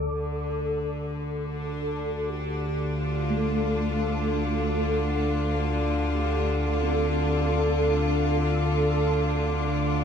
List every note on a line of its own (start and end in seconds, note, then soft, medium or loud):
0.00 1.71 A4 loud
0.00 0.13 D5 medium
0.10 10.04 D2 medium
0.10 10.04 D3 medium
1.51 10.04 D4 medium
1.73 2.31 A4 loud
2.29 3.38 G4 loud
2.96 10.04 F4 medium
3.30 9.84 A3 medium
3.36 3.91 A4 loud
3.92 4.43 A4 medium
4.48 5.53 A4 loud
6.11 6.66 G4 loud
6.64 8.28 A4 loud
6.83 10.04 C4 medium
8.30 9.89 A4 loud
8.84 10.04 D5 medium